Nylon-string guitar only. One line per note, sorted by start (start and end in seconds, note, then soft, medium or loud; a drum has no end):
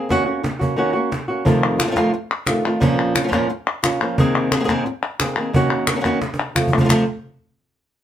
0.09 0.26 D#3 medium
0.09 0.27 A#3 medium
0.09 0.26 C#4 loud
0.09 0.25 F#4 loud
0.26 0.43 A#3 medium
0.26 0.43 C#4 medium
0.26 0.43 F#4 medium
0.43 muted nylon-string guitar stroke medium
0.59 0.76 A#3 soft
0.59 0.77 C#4 medium
0.59 0.77 F#4 medium
0.76 0.94 D#3 medium
0.76 0.94 A#3 medium
0.76 0.94 C#4 loud
0.76 0.92 F#4 medium
0.93 1.11 A#3 medium
0.93 1.11 C#4 medium
0.93 1.10 F#4 medium
1.12 muted nylon-string guitar stroke medium
1.28 1.46 A#3 soft
1.28 1.46 C#4 soft
1.28 1.45 F#4 medium
1.45 1.79 F2 medium
1.45 1.79 C3 medium
1.45 1.79 D#3 medium
1.45 1.79 A3 medium
1.45 1.78 C4 medium
1.45 1.77 F4 loud
1.78 1.82 D#3 soft
1.78 1.82 A3 medium
1.78 1.82 C4 medium
1.78 1.83 F4 medium
1.82 1.86 C3 medium
1.82 1.86 A3 medium
1.82 1.87 C4 medium
1.82 1.87 F4 medium
1.87 1.90 C3 medium
1.87 1.90 D#3 medium
1.87 1.91 A3 medium
1.87 1.91 C4 medium
1.87 1.91 F4 medium
1.92 1.95 C3 medium
1.92 1.95 D#3 medium
1.92 1.95 A3 medium
1.92 1.96 C4 medium
1.92 1.96 F4 medium
1.96 2.12 F2 medium
1.96 2.13 C3 medium
1.96 2.13 D#3 medium
1.96 2.13 A3 medium
1.96 2.13 C4 medium
1.96 2.13 F4 loud
2.14 muted nylon-string guitar stroke medium
2.47 2.64 D#3 medium
2.47 2.64 A3 medium
2.47 2.64 C4 medium
2.47 2.64 F4 medium
2.65 2.80 D#3 medium
2.65 2.81 A3 medium
2.65 2.82 C4 medium
2.65 2.81 F4 medium
2.80 3.14 A#2 medium
2.80 3.15 F3 medium
2.80 3.15 A#3 loud
2.80 3.15 C#4 medium
2.80 3.14 F4 medium
3.15 3.23 A#3 medium
3.15 3.23 C#4 medium
3.15 3.23 F4 medium
3.23 3.27 F3 medium
3.23 3.27 A#3 medium
3.23 3.28 C#4 medium
3.23 3.28 F4 medium
3.28 3.32 F3 medium
3.28 3.32 A#3 medium
3.28 3.32 C#4 medium
3.28 3.33 F4 medium
3.32 3.48 A#2 loud
3.32 3.49 F3 medium
3.32 3.49 A#3 medium
3.32 3.49 C#4 loud
3.32 3.49 F4 medium
3.49 muted nylon-string guitar stroke medium
3.83 4.01 A#3 soft
3.83 4.00 C#4 medium
3.83 4.00 F4 medium
4.01 4.17 F3 medium
4.01 4.18 A#3 medium
4.01 4.18 C#4 medium
4.01 4.18 F4 medium
4.18 4.51 C3 medium
4.18 4.52 D#3 loud
4.18 4.52 A#3 medium
4.18 4.52 C4 loud
4.18 4.51 G#4 loud
4.52 4.59 D#3 medium
4.52 4.56 A#3 soft
4.52 4.55 C4 soft
4.52 4.55 G#4 medium
4.56 4.63 D#3 medium
4.56 4.59 C4 medium
4.56 4.60 G#4 medium
4.60 4.68 D#3 medium
4.60 4.64 A#3 medium
4.60 4.64 C4 medium
4.60 4.64 G#4 medium
4.65 4.85 C3 medium
4.65 4.68 A#3 medium
4.65 4.69 C4 medium
4.65 4.69 G#4 medium
4.69 4.85 D#3 medium
4.69 4.85 A#3 medium
4.69 4.86 C4 medium
4.69 4.85 G#4 medium
4.86 muted nylon-string guitar stroke medium
5.19 5.36 A#3 medium
5.19 5.36 C4 medium
5.19 5.36 G#4 medium
5.36 5.52 D#3 medium
5.36 5.53 A#3 medium
5.36 5.54 C4 medium
5.36 5.54 G#4 medium
5.53 5.87 D#3 medium
5.53 5.87 A#3 medium
5.53 5.88 C#4 medium
5.53 5.86 F#4 loud
5.88 5.95 A#3 soft
5.88 5.95 C#4 medium
5.88 5.96 F#4 medium
5.96 5.99 D#3 medium
5.96 6.03 D#3 medium
5.96 5.99 A#3 medium
5.96 6.00 C#4 medium
5.96 6.00 F#4 medium
6.01 6.21 D#3 medium
6.01 6.04 A#3 medium
6.01 6.05 C#4 medium
6.01 6.05 F#4 medium
6.05 6.21 A#3 medium
6.05 6.21 C#4 medium
6.05 6.21 F#4 medium
6.21 muted nylon-string guitar stroke medium
6.55 6.71 F3 soft
6.55 6.72 A3 medium
6.55 6.72 C4 medium
6.55 6.72 F4 medium
6.72 6.79 F3 medium
6.72 6.79 A3 medium
6.72 6.80 C4 medium
6.72 6.80 F4 medium
6.80 6.83 C3 medium
6.80 6.88 C3 medium
6.80 6.83 F3 medium
6.80 6.84 A3 medium
6.80 6.84 C4 medium
6.80 6.85 F4 medium
6.85 6.88 F3 medium
6.85 6.88 A3 medium
6.85 6.89 C4 medium
6.85 6.89 F4 medium
6.89 7.03 F2 medium
6.89 7.03 C3 medium
6.89 7.03 F3 loud
6.89 7.03 A3 loud
6.89 7.04 C4 loud
6.89 7.04 F4 loud